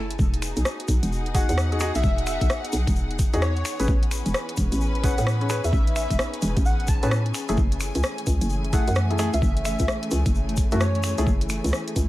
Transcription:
Already playing: fm bass F#1, analog synth pad A3 C#4 E4 G#4, string section A3 E4 G#5
0.11 closed hi-hat
0.19 fm bass E1, analog synth pad B3 D#4 F#4 G#4, string section D#4, kick, shaker
0.34 closed hi-hat
0.41 string section G#4, finger snap, open hi-hat, shaker
0.57 fm bass B1, closed hi-hat, shaker
0.65 cross-stick, shaker
0.80 closed hi-hat
0.84 fm bass B1, string section F#5, kick, shaker
0.88 open hi-hat
1.03 fm bass E1, closed hi-hat, shaker
1.12 shaker
1.26 closed hi-hat
1.34 grand piano D#4 F#4 G#4, digital synth lead F#5, kick, open hi-hat, shaker
1.49 fm bass E2, digital synth lead F#5, closed hi-hat, shaker
1.58 cross-stick, shaker
1.72 grand piano D#4 F#4 G#4, closed hi-hat
1.80 grand piano D#4 F#4 G#4, finger snap, open hi-hat, shaker
1.95 fm bass B1, digital synth lead E5, closed hi-hat, shaker
2.03 fm bass E1, kick, shaker
2.18 closed hi-hat
2.27 digital synth lead E5, finger snap, open hi-hat, shaker
2.41 fm bass B1, kick, closed hi-hat, shaker
2.50 cross-stick, shaker
2.65 closed hi-hat
2.72 fm bass B1, open hi-hat, shaker
2.87 fm bass E1, kick, closed hi-hat, shaker
2.96 shaker
3.11 closed hi-hat
3.19 kick, open hi-hat, shaker
3.33 fm bass E2, grand piano D#4 F#4 G#4, closed hi-hat, shaker
3.42 digital synth lead C#5, cross-stick, shaker
3.57 digital synth lead C#5, closed hi-hat
3.65 analog synth pad E3 B3 C#4, string section C#4, digital synth lead C#5, finger snap, open hi-hat, shaker
3.77 fm bass A1, grand piano C#4 G#4 B4, string section B4, closed hi-hat, shaker
3.88 fm bass A1, kick
4.03 string section G#5, closed hi-hat
4.11 finger snap, open hi-hat, shaker
4.26 fm bass E1, closed hi-hat, shaker
4.34 cross-stick, shaker
4.49 closed hi-hat
4.57 fm bass E1, kick, open hi-hat, shaker
4.72 fm bass A1, closed hi-hat, shaker
4.81 shaker
4.95 closed hi-hat
5.04 grand piano C#4 G#4 B4, digital synth lead F#5, kick, open hi-hat, shaker
5.18 fm bass A2, digital synth lead F#5, closed hi-hat, shaker
5.27 cross-stick, shaker
5.41 grand piano C#4 G#4 B4, closed hi-hat
5.49 grand piano C#4 G#4 B4, analog synth pad D#4, finger snap, open hi-hat, shaker
5.64 fm bass E2, digital synth lead E5, closed hi-hat, shaker
5.73 fm bass A1, kick, shaker
5.87 closed hi-hat
5.96 digital synth lead E5, finger snap, open hi-hat, shaker
6.10 fm bass E1, kick, closed hi-hat, shaker
6.19 cross-stick, shaker
6.34 closed hi-hat
6.42 fm bass E1, open hi-hat, shaker
6.57 fm bass A1, kick, closed hi-hat, shaker
6.65 digital synth lead F#5, shaker
6.80 digital synth lead F#5, closed hi-hat
6.87 digital synth lead A5, kick, open hi-hat, shaker
7.03 fm bass A2, grand piano C#4 G#4 B4, digital synth lead A5, closed hi-hat, shaker
7.11 cross-stick, shaker
7.26 closed hi-hat
7.34 string section E3, analog synth pad A3 E4, finger snap, open hi-hat, shaker
7.49 fm bass F#1, grand piano A3 E4 G#4, closed hi-hat, shaker
7.57 fm bass F#1, kick, shaker
7.72 closed hi-hat
7.77 string section A3, shaker
7.81 finger snap, open hi-hat
7.95 fm bass C#2, closed hi-hat, shaker
8.03 cross-stick, shaker
8.18 closed hi-hat
8.27 fm bass C#2, kick, open hi-hat, shaker
8.41 fm bass F#1, closed hi-hat, shaker
8.50 shaker
8.64 closed hi-hat
8.73 grand piano A3 E4 G#4, digital synth lead F#5, kick, open hi-hat, shaker
8.87 fm bass F#2, digital synth lead F#5, closed hi-hat, shaker
8.95 cross-stick, shaker
9.10 grand piano A3 E4 G#4, closed hi-hat
9.19 grand piano A3 E4 G#4, finger snap, open hi-hat, shaker
9.33 fm bass C#2, digital synth lead E5, closed hi-hat, shaker
9.42 fm bass F#1, kick, shaker
9.57 closed hi-hat
9.65 digital synth lead E5, finger snap, open hi-hat, shaker
9.79 fm bass C#2, kick, closed hi-hat, shaker
9.88 cross-stick, shaker
10.03 closed hi-hat
10.11 fm bass C#2, open hi-hat, shaker
10.26 fm bass F#1, kick, closed hi-hat, shaker
10.35 shaker
10.49 closed hi-hat
10.57 kick, open hi-hat, shaker
10.71 fm bass F#2, grand piano A3 E4 F#4, closed hi-hat, shaker
10.80 digital synth lead C#5, cross-stick, shaker
10.95 digital synth lead C#5, closed hi-hat
11.03 digital synth lead C#5, finger snap, open hi-hat, shaker
11.18 fm bass C#2, grand piano A3 E4 G#4, closed hi-hat, shaker
11.27 fm bass F#1, kick, shaker
11.41 closed hi-hat
11.49 finger snap, open hi-hat, shaker
11.64 fm bass C#2, closed hi-hat, shaker
11.73 cross-stick, shaker
11.88 closed hi-hat
11.96 fm bass C#2, kick, open hi-hat, shaker

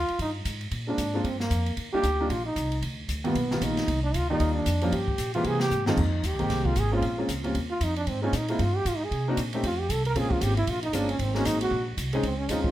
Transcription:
Already playing: trombone F4
0.08 muted upright bass stroke, ride
0.19 upright bass G2, trombone D#4, kick, ride
0.45 upright bass G#2, kick, hi-hat pedal, ride
0.61 ride
0.71 upright bass A#2, kick, ride
0.87 grand piano G#3 A#3 C4 D4 F4, trombone D4
0.98 upright bass G#2, kick, hi-hat pedal, ride
1.14 grand piano G#3 A#3 C4 D4 F4
1.24 upright bass G2, trombone C4, kick, ride
1.40 trombone A#3, snare
1.50 upright bass F2, kick, hi-hat pedal, ride
1.66 ride
1.77 upright bass D#2, kick, ride
1.93 grand piano G3 A#3 D4 D#4 F4, trombone G4, muted upright bass stroke
2.03 upright bass D2, kick, hi-hat pedal, ride
2.20 grand piano G3 A#3 D4 D#4 F4
2.30 upright bass A#1, trombone F4, kick, ride
2.46 trombone D#4
2.56 upright bass C2, kick, hi-hat pedal, ride
2.72 ride
2.82 upright bass D2, kick, ride
3.09 upright bass D2, kick, hi-hat pedal, ride
3.24 grand piano D#3 G3 A#3 B3 F4, trombone B3, ride
3.35 upright bass B1, kick, ride
3.51 grand piano D#3 G3 A#3 B3 F4, snare
3.61 upright bass A#1, trombone D#4, kick, hi-hat pedal, ride
3.77 snare, ride
3.88 upright bass C2, kick, ride
4.03 trombone D4
4.14 upright bass D2, trombone F4, kick, hi-hat pedal, ride
4.30 grand piano D#3 G3 A#3 F4 D5, trombone D#4
4.40 upright bass D#2, kick, ride
4.55 trombone D4
4.66 upright bass F2, kick, hi-hat pedal, ride
4.81 grand piano F3 G3 A#3 C#4 F4, ride
4.92 upright bass G2, trombone G4, kick, ride
5.08 kick
5.18 upright bass A#2, kick, hi-hat pedal, ride
5.34 grand piano E3 G#3 A#3 C4 G4, trombone F4, ride
5.44 upright bass C3, trombone G#4, kick, ride
5.60 trombone G4, snare
5.71 upright bass G#2, hi-hat pedal
5.86 grand piano F2 D#3 G#3 A#3 C4 F4, trombone D#4, snare
5.97 upright bass F2, kick, crash
6.24 upright bass D#2, trombone G4, kick, hi-hat pedal, ride
6.33 upright bass C2
6.39 upright bass G#1, grand piano D#3 G#3 A#3 C4 G4, ride
6.50 upright bass C2, kick, snare, ride
6.65 trombone F4, kick
6.76 upright bass G#1, trombone G#4, kick, hi-hat pedal, ride
6.92 grand piano G#3 A#3 C4 C#4 F4, trombone F4
7.02 upright bass A#1, kick, ride
7.18 grand piano G#3 A#3 C4 C#4 F4
7.29 upright bass C#2, kick, hi-hat pedal, ride
7.44 grand piano G3 A#3 C4 C#4 F4, ride
7.55 upright bass D#2, kick, ride
7.70 trombone F4
7.81 upright bass F2, trombone D#4, kick, hi-hat pedal, ride
7.96 trombone D4, ride
8.07 upright bass G#2, trombone C4, kick, ride
8.22 grand piano G#3 A#3 C4 D#4 F4, trombone C#4
8.33 upright bass A#2, trombone D#4, kick, hi-hat pedal, ride
8.48 grand piano G#3 A#3 C4 D#4 F4, trombone E4, ride
8.59 upright bass G2, trombone F4, kick, ride
8.76 trombone G4
8.85 upright bass G#2, trombone F4, kick, hi-hat pedal, ride
8.97 trombone D#4
9.04 trombone G#4
9.11 upright bass C3, kick, ride
9.28 grand piano A#3 C4 D4 D#4 F#4
9.37 upright bass A#2, kick, hi-hat pedal, ride
9.53 grand piano A3 C4 C#4 D#4 G4, ride
9.63 upright bass F2, trombone F4, kick, ride
9.80 trombone G4
9.89 upright bass C2, trombone A4, kick, hi-hat pedal, ride
10.05 trombone A#4, ride
10.15 upright bass A#1, grand piano G#3 A#3 C4 C#4 F4, trombone G#4, kick, ride
10.31 trombone F4, kick
10.41 upright bass G#1, trombone G4, kick, hi-hat pedal, ride
10.57 trombone E4, ride
10.67 upright bass A#1, trombone F4, kick, ride
10.83 trombone D#4, ride
10.93 upright bass G1, grand piano G#3 A#3 C4 C#4 F4, trombone D4, kick, hi-hat pedal, ride
11.09 trombone C#4, ride
11.19 upright bass G#1, trombone C4, kick, ride
11.35 grand piano G#3 A#3 C4 D#4 F#4, trombone C#4, snare
11.45 upright bass A1, trombone D#4, kick, hi-hat pedal, ride
11.61 trombone F#4, ride
11.71 upright bass A#1, kick
11.97 upright bass C2, kick, hi-hat pedal, ride
12.13 grand piano G#3 C4 C#4 D#4 G#4, ride
12.23 upright bass C#2, trombone C4, kick, ride
12.39 trombone C#4
12.49 upright bass D#2, grand piano G#3 C4 C#4 D#4 F4, trombone D#4, kick, hi-hat pedal, ride
12.64 trombone F4, kick

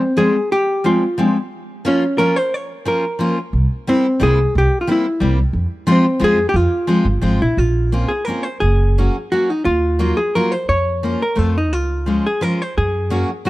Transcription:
Already playing: hollow-body jazz guitar C4
0.17 steel-string acoustic guitar F3 G3 G#3 C4, hollow-body jazz guitar G#4
0.52 hollow-body jazz guitar G4
0.84 steel-string acoustic guitar F3 G3 G#3 C4, hollow-body jazz guitar F4
1.18 steel-string acoustic guitar F3 G3 G#3 C4
1.85 steel-string acoustic guitar F3 A#3 C#4 F4, hollow-body jazz guitar C#4
2.18 steel-string acoustic guitar F3 A#3 C#4 F4, hollow-body jazz guitar A#4
2.36 hollow-body jazz guitar C5
2.54 hollow-body jazz guitar C#5
2.85 steel-string acoustic guitar F3 A#3 C#4 F4, hollow-body jazz guitar A#4
3.19 steel-string acoustic guitar F3 A#3 C#4 F4
3.53 upright bass C2
3.87 steel-string acoustic guitar G3 A#3 C4 E4, hollow-body jazz guitar C4
4.20 upright bass C2, steel-string acoustic guitar G3 A#3 C4 E4, hollow-body jazz guitar G#4
4.55 upright bass C2, hollow-body jazz guitar G4
4.81 hollow-body jazz guitar F4
4.87 steel-string acoustic guitar G3 A#3 C4 E4
4.92 hollow-body jazz guitar E4
5.20 upright bass C2, steel-string acoustic guitar G3 A#3 C4 E4
5.53 upright bass F2
5.87 steel-string acoustic guitar F3 G#3 C4 F4
5.92 hollow-body jazz guitar C4
6.19 upright bass F2, steel-string acoustic guitar F3 G#3 C4 F4
6.24 hollow-body jazz guitar G#4
6.49 hollow-body jazz guitar G4
6.54 upright bass F2, hollow-body jazz guitar F4
6.87 steel-string acoustic guitar F3 G#3 C4 F4
7.05 upright bass G1
7.21 upright bass G#1, steel-string acoustic guitar F3 G#3 C4 F4
7.41 upright bass A#1, hollow-body jazz guitar E4
7.57 upright bass A#1, hollow-body jazz guitar F4
7.92 steel-string acoustic guitar A#3 C4 C#4 F4
8.08 hollow-body jazz guitar G#4
8.25 steel-string acoustic guitar A#3 C4 C#4, hollow-body jazz guitar A#4
8.30 steel-string acoustic guitar F4
8.43 hollow-body jazz guitar C5
8.60 upright bass F#1, hollow-body jazz guitar G#4
8.98 steel-string acoustic guitar F#3 A#3 C#4 F#4
9.32 steel-string acoustic guitar F#3 A#3 C#4 F#4, hollow-body jazz guitar F#4
9.50 hollow-body jazz guitar D#4
9.65 upright bass D#2, hollow-body jazz guitar F4
9.99 steel-string acoustic guitar F#3 A#3 D#4 F4
10.17 hollow-body jazz guitar G#4
10.35 steel-string acoustic guitar F#3 A#3 D#4 F4, hollow-body jazz guitar A#4
10.52 hollow-body jazz guitar C5
10.69 upright bass F2, hollow-body jazz guitar C#5
11.03 steel-string acoustic guitar F3 A#3 C#4 F4
11.22 hollow-body jazz guitar A#4
11.35 upright bass F2, steel-string acoustic guitar F3 A3 C4 F4, hollow-body jazz guitar A4
11.58 hollow-body jazz guitar D#4
11.73 upright bass C#2, hollow-body jazz guitar F4
12.06 steel-string acoustic guitar F3 G#3 C#4 F4
12.27 hollow-body jazz guitar G#4
12.41 steel-string acoustic guitar F3 G#3 C#4 F4, hollow-body jazz guitar A#4
12.62 hollow-body jazz guitar C5
12.77 upright bass F#2, hollow-body jazz guitar G#4
13.10 steel-string acoustic guitar F#3 A#3 C#4 F#4
13.45 steel-string acoustic guitar F#3 A#3 C#4

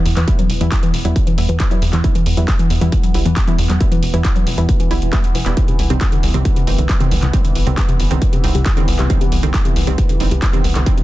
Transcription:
Already playing: synth drone E3 B3
0.06 analog synth bass E2, open hi-hat
0.17 analog synth bass E2, synth arpeggio sound E3, clap, closed hi-hat
0.28 synth stab G3 B3 E4, kick, closed hi-hat
0.39 synth arpeggio sound F#3, closed hi-hat
0.50 analog synth bass E1, open hi-hat
0.61 analog synth bass E2, synth arpeggio sound E3, synth stab G3 B3 E4, closed hi-hat
0.72 kick, clap, closed hi-hat
0.83 synth arpeggio sound E3, closed hi-hat
0.94 analog synth bass E1, open hi-hat
1.05 analog synth bass E2, synth arpeggio sound F#3, synth stab G3 B3 E4, closed hi-hat
1.16 kick, closed hi-hat
1.27 synth arpeggio sound E3, closed hi-hat
1.38 analog synth bass E2, synth stab G3 B3 E4, open hi-hat
1.49 analog synth bass E2, synth arpeggio sound E3, closed hi-hat
1.60 kick, clap, closed hi-hat
1.71 synth arpeggio sound F#3, synth stab G3 B3 E4, closed hi-hat
1.82 analog synth bass E2, open hi-hat
1.93 analog synth bass E2, synth arpeggio sound E3, clap, closed hi-hat
2.04 synth stab G3 B3 E4, kick, closed hi-hat
2.15 synth arpeggio sound E3, closed hi-hat
2.26 analog synth bass E2, open hi-hat
2.37 analog synth bass E2, synth arpeggio sound F#3, synth stab G3 B3 E4, closed hi-hat
2.48 kick, clap, closed hi-hat
2.59 synth arpeggio sound E3, closed hi-hat
2.70 analog synth bass E2, open hi-hat
2.81 analog synth bass E2, synth arpeggio sound E3, synth stab G3 B3 E4, closed hi-hat
2.92 kick, closed hi-hat
3.03 synth arpeggio sound F#3, closed hi-hat
3.14 analog synth bass B1, synth stab G3 B3 E4, open hi-hat
3.25 analog synth bass E2, synth arpeggio sound E3, closed hi-hat
3.36 kick, clap, closed hi-hat
3.48 synth arpeggio sound E3, synth stab G3 B3 E4, closed hi-hat
3.58 analog synth bass E2, open hi-hat
3.70 analog synth bass E2, synth arpeggio sound F#3, clap, closed hi-hat
3.81 synth stab G3 B3 E4, kick, closed hi-hat
3.92 synth arpeggio sound E3, closed hi-hat
4.03 analog synth bass E1, open hi-hat
4.14 analog synth bass E2, synth arpeggio sound E3, synth stab G3 B3 E4, closed hi-hat
4.25 kick, clap, closed hi-hat
4.36 synth arpeggio sound F#3, closed hi-hat
4.47 analog synth bass E1, open hi-hat
4.58 analog synth bass E2, synth arpeggio sound E3, synth stab G3 B3 E4, closed hi-hat
4.69 kick, closed hi-hat
4.80 synth arpeggio sound E3, closed hi-hat
4.91 analog synth bass B1, synth stab G3 B3 E4, synth arpeggio sound E4, open hi-hat
5.02 analog synth bass E1, closed hi-hat
5.13 synth arpeggio sound E3, synth stab G3 B3 E4, kick, clap, closed hi-hat
5.24 closed hi-hat
5.35 analog synth bass E1, synth arpeggio sound E3, open hi-hat
5.46 analog synth bass E1, synth stab G3 B3 E4, clap, closed hi-hat
5.57 synth stab D#3 G3 C4, kick, closed hi-hat
5.68 synth arpeggio sound C3, closed hi-hat
5.79 analog synth bass C2, open hi-hat
5.90 analog synth bass C2, synth arpeggio sound C3, synth stab D#3 G3 C4, closed hi-hat
6.01 kick, clap, closed hi-hat
6.12 synth arpeggio sound D3, closed hi-hat
6.23 analog synth bass C2, open hi-hat
6.34 analog synth bass C2, synth arpeggio sound C3, synth stab D#3 G3 C4, closed hi-hat
6.45 kick, closed hi-hat
6.56 synth arpeggio sound C3, closed hi-hat
6.67 analog synth bass G1, synth stab D#3 G3 C4, open hi-hat
6.78 analog synth bass C2, synth arpeggio sound D3, closed hi-hat
6.89 kick, clap, closed hi-hat
7.00 synth arpeggio sound C3, synth stab D#3 G3 C4, closed hi-hat
7.11 analog synth bass C2, open hi-hat
7.22 analog synth bass C2, synth arpeggio sound C3, clap, closed hi-hat
7.33 synth stab D#3 G3 C4, kick, closed hi-hat
7.45 synth arpeggio sound D3, closed hi-hat
7.55 analog synth bass G1, open hi-hat
7.67 analog synth bass C2, synth arpeggio sound C3, synth stab D#3 G3 C4, closed hi-hat
7.78 kick, clap, closed hi-hat
7.89 synth arpeggio sound C3, closed hi-hat
8.00 analog synth bass G1, open hi-hat
8.11 analog synth bass C2, synth arpeggio sound D3, synth stab D#3 G3 C4, closed hi-hat
8.22 kick, closed hi-hat
8.33 synth arpeggio sound C3, closed hi-hat
8.44 analog synth bass C2, synth stab D#3 G3 C4, open hi-hat
8.55 analog synth bass C2, synth arpeggio sound C3, closed hi-hat
8.66 kick, clap, closed hi-hat
8.77 synth arpeggio sound D3, synth stab D#3 G3 C4, closed hi-hat
8.88 analog synth bass C2, open hi-hat
8.99 analog synth bass C2, synth arpeggio sound C3, clap, closed hi-hat
9.10 synth stab D#3 G3 C4, kick, closed hi-hat
9.21 synth arpeggio sound C3, closed hi-hat
9.32 analog synth bass C2, open hi-hat
9.43 analog synth bass C2, synth arpeggio sound D3, synth stab D#3 G3 C4, closed hi-hat
9.54 kick, clap, closed hi-hat
9.65 synth arpeggio sound C3, closed hi-hat
9.76 analog synth bass C2, open hi-hat
9.87 analog synth bass C2, synth arpeggio sound C3, synth stab D#3 G3 C4, closed hi-hat
9.98 kick, closed hi-hat
10.09 synth arpeggio sound D3, closed hi-hat
10.20 analog synth bass G1, synth stab D#3 G3 C4, open hi-hat
10.31 analog synth bass C2, synth arpeggio sound C3, closed hi-hat
10.42 kick, clap, closed hi-hat
10.53 synth arpeggio sound C3, synth stab D#3 G3 C4, closed hi-hat
10.64 analog synth bass C2, open hi-hat
10.75 analog synth bass C2, synth arpeggio sound D3, clap, closed hi-hat
10.86 synth stab D#3 G3 C4, kick, closed hi-hat
10.97 synth arpeggio sound C3, closed hi-hat

